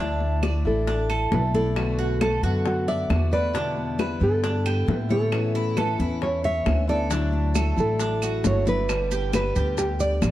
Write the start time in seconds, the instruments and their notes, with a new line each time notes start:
Already playing: upright bass D2, nylon-string guitar D5
0.00 steel-string acoustic guitar D3 A3 D4 E4, cuban tres D4
0.20 high conga
0.43 steel-string acoustic guitar D3 A3 D4 E4, cuban tres D5, high bongo, high conga, claves
0.65 upright bass A1, steel-string acoustic guitar A3 D4 E4, nylon-string guitar A4, high conga
0.87 cuban tres D4, high bongo, high conga
1.10 cuban tres A4, high conga, claves
1.31 upright bass B1, steel-string acoustic guitar D3 A3 D4 E4, nylon-string guitar B4, high bongo, low bongo, high conga
1.54 steel-string acoustic guitar A3 D4 E4, nylon-string guitar A4, cuban tres D5, high conga
1.76 steel-string acoustic guitar B2 D3 A3 B3 F#4, high bongo, high conga, claves
1.99 cuban tres F#4, high bongo, high conga
2.21 steel-string acoustic guitar D3 A3 B3 F#4, cuban tres A4, nylon-string guitar A4, high bongo, high conga, claves
2.43 upright bass F#2, steel-string acoustic guitar D3 A3 B3 F#4, cuban tres F#4, high conga
2.66 nylon-string guitar F#4, high bongo, high conga
2.88 cuban tres D5, nylon-string guitar E5, high bongo, high conga
3.10 upright bass E2, steel-string acoustic guitar D3 A3 B3 F#4, high bongo, low bongo, high conga, claves
3.31 steel-string acoustic guitar D3 A3 B3 F#4, cuban tres B4, nylon-string guitar D5, high bongo, high conga
3.53 steel-string acoustic guitar B2 D3 G3 B3 E4, cuban tres D4, high bongo, high conga
3.77 high conga
3.98 steel-string acoustic guitar D3 G3 B3 E4, cuban tres B4, high bongo, high conga, claves
4.20 upright bass G2, steel-string acoustic guitar D3 G3 B3 E4, nylon-string guitar A4, high conga
4.44 cuban tres D4, high bongo, high conga
4.66 cuban tres G4, high conga, claves
4.86 upright bass A2, steel-string acoustic guitar D3 G3 B3 E4, nylon-string guitar B4, high bongo, low bongo, high conga
5.09 steel-string acoustic guitar D3 G3 B3 E4, nylon-string guitar A4, cuban tres C#5, high conga
5.32 steel-string acoustic guitar E3 B3 C#4 E4, high bongo, high conga, claves
5.55 cuban tres E4, high bongo, high conga
5.76 steel-string acoustic guitar E3 B3 C#4 E4, cuban tres A4, nylon-string guitar B4, high bongo, high conga, claves
5.98 upright bass E2, steel-string acoustic guitar B3 C#4 E4, cuban tres E4, high conga
6.22 nylon-string guitar C#5, high bongo, high conga
6.44 cuban tres C#5, nylon-string guitar E5, high bongo, high conga
6.65 upright bass D2, steel-string acoustic guitar E3 B3 C#4 E4, high bongo, low bongo, high conga, claves
6.87 steel-string acoustic guitar B3 C#4 E4, cuban tres A4, nylon-string guitar D5, high bongo, high conga
7.10 steel-string acoustic guitar D3 F#3 A3 D4 E4, cuban tres D4, high bongo, high conga, maracas
7.33 high conga
7.54 steel-string acoustic guitar F#3 A3 D4 E4, cuban tres A4, high bongo, high conga, claves, maracas
7.76 upright bass A1, steel-string acoustic guitar F#3 A3 D4 E4, nylon-string guitar A4, high conga, maracas
8.00 cuban tres D4, high bongo, high conga, maracas
8.22 cuban tres F#4, high conga, claves, maracas
8.44 upright bass G1, steel-string acoustic guitar F#3 A3 D4 E4, nylon-string guitar C#5, high bongo, low bongo, high conga, maracas
8.65 steel-string acoustic guitar F#3 A3 D4 E4, nylon-string guitar B4, cuban tres D5, high conga, maracas
8.88 steel-string acoustic guitar B2 D3 G3 B3 G4, high bongo, high conga, claves, maracas
9.11 cuban tres G4, high bongo, high conga, maracas
9.33 steel-string acoustic guitar D3 G3 B3 G4, cuban tres B4, nylon-string guitar B4, high bongo, high conga, claves, maracas
9.56 upright bass D2, steel-string acoustic guitar D3 G3 B3 G4, cuban tres G4, high conga, maracas
9.78 nylon-string guitar G4, high bongo, high conga, maracas
10.00 cuban tres D5, nylon-string guitar D5, high bongo, high conga, maracas
10.22 upright bass A1, steel-string acoustic guitar D3 G3 B3 G4, high bongo, low bongo, high conga, claves, maracas